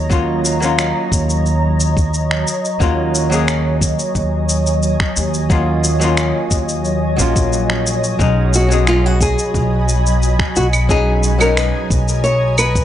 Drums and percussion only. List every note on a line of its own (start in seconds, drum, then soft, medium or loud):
0.11 kick loud
0.11 shaker soft
0.45 shaker medium
0.62 shaker soft
0.79 finger snap medium
0.79 shaker soft
1.12 kick loud
1.12 shaker medium
1.30 shaker soft
1.46 shaker soft
1.80 shaker medium
1.97 kick loud
1.97 shaker soft
2.14 shaker soft
2.31 finger snap medium
2.47 shaker medium
2.65 shaker soft
2.80 kick loud
2.80 shaker soft
3.15 shaker medium
3.32 shaker soft
3.48 finger snap medium
3.48 shaker soft
3.81 kick loud
3.81 shaker medium
3.99 shaker soft
4.15 kick medium
4.15 shaker soft
4.49 shaker medium
4.66 shaker soft
4.83 shaker soft
5.00 finger snap medium
5.00 kick loud
5.16 shaker medium
5.34 shaker soft
5.50 kick loud
5.50 shaker soft
5.84 shaker medium
6.01 shaker soft
6.17 finger snap medium
6.17 shaker soft
6.51 kick loud
6.51 shaker medium
6.69 shaker soft
6.85 shaker soft
7.18 kick medium
7.18 shaker medium
7.36 kick loud
7.36 shaker soft
7.53 shaker soft
7.70 finger snap medium
7.87 shaker medium
8.04 shaker soft
8.20 kick loud
8.20 shaker soft
8.54 shaker medium
8.71 shaker soft
8.87 finger snap medium
8.87 shaker soft
9.21 kick loud
9.21 shaker medium
9.39 shaker soft
9.54 kick medium
9.54 shaker soft
9.89 shaker medium
10.07 shaker soft
10.23 shaker soft
10.39 finger snap medium
10.39 kick loud
10.56 shaker medium
10.73 claves medium
10.73 shaker soft
10.89 kick loud
10.89 shaker soft
11.23 shaker medium
11.41 claves medium
11.41 shaker soft
11.57 finger snap medium
11.57 shaker soft
11.90 kick loud
11.90 shaker medium
12.08 shaker soft
12.25 shaker soft
12.58 claves medium
12.58 shaker medium
12.75 kick medium
12.75 shaker soft